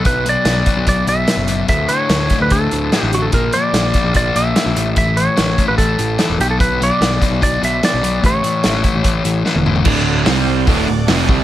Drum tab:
CC |----------------|----------------|----------------|----------------|
HH |x-x-x-x-x-x-x-x-|x-x-x-x-x-x-x-x-|x-x-x-x-x-x-x-x-|x-x-x-x-x-x-x-x-|
SD |----o-------o---|----o-o-----o---|----o-o-----o---|----o-------o---|
T1 |----------------|----------------|----------------|----------------|
T2 |----------------|----------------|----------------|----------------|
FT |----------------|----------------|----------------|----------------|
BD |o-----o-o-------|o-----o-o-------|o-----o-o-------|o-----o-o-------|

CC |----------------|----------------|x---------------|
HH |x-x-x-x-x-x-x-x-|x-x-x-x-x-x-----|----o---o---o---|
SD |----o-o-----o---|----o-------o---|----o-------o---|
T1 |----------------|-------------o--|----------------|
T2 |----------------|--------------o-|----------------|
FT |----------------|---------------o|----------------|
BD |o-----o-o-------|o-----o-o-------|o-------o-----o-|